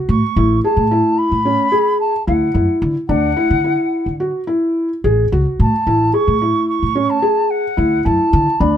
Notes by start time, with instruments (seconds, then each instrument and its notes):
Already playing: felt piano F#4
0.09 upright bass A2, flute C#6
0.36 upright bass A1, felt piano E4
0.64 felt piano G#4, flute A5
0.77 upright bass A2
0.91 felt piano E4
1.18 flute B5
1.32 upright bass A2
1.45 felt piano C#4
1.72 felt piano G#4
2.00 flute A5
2.27 upright bass D2, felt piano E4, flute F#5
2.54 upright bass F#2, felt piano E4
2.82 upright bass D3
3.08 upright bass D2, felt piano D4, flute F#5
3.37 felt piano E4
3.50 upright bass D3
3.64 felt piano E4
4.06 upright bass D3
4.20 felt piano F#4
4.47 felt piano E4
5.04 upright bass A1, felt piano G#4
5.32 upright bass C#2, felt piano F#4
5.59 upright bass A2, flute A5
5.87 upright bass A1, felt piano E4
6.13 felt piano G#4, flute C#6
6.28 upright bass A2
6.42 felt piano E4
6.68 flute C#6
6.83 upright bass A2
6.95 felt piano C#4
7.10 flute A5
7.22 felt piano G#4
7.50 flute F#5
7.77 upright bass D2, felt piano E4
8.05 upright bass F#2, felt piano E4, flute A5
8.33 upright bass D3
8.59 upright bass D2, felt piano D4, flute B5